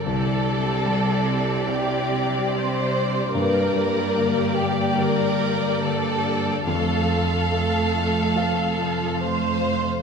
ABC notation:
X:1
M:4/4
L:1/16
Q:1/4=72
K:Gm
V:1 name="Violin section"
d16 | d16 | f12- f3 z |]
V:2 name="Violin section"
A8 G4 c4 | B6 G2 B4 A4 | A12 c4 |]
V:3 name="Grand piano"
C,,4 G,4 [Gd]8 | G,,4 B,4 [Gd]8 | F,,4 A,4 [Af]8 |]
V:4 name="Viola section"
[G,G]16 | [B,G]16 | [A,A]4 A,6 F,2 A,4 |]
V:5 name="Harp" clef=bass
[C,G,D]2 G,2 C2 D2 C2 G,2 C2 D2 | G,,2 G,2 D,2 D2 D,2 G,2 D,2 D2 | F,,2 C2 C,2 F2 C,2 F,2 C,2 F2 |]
V:6 name="Cello section" clef=bass
C,16 | G,,16 | F,,12- F,,3 z |]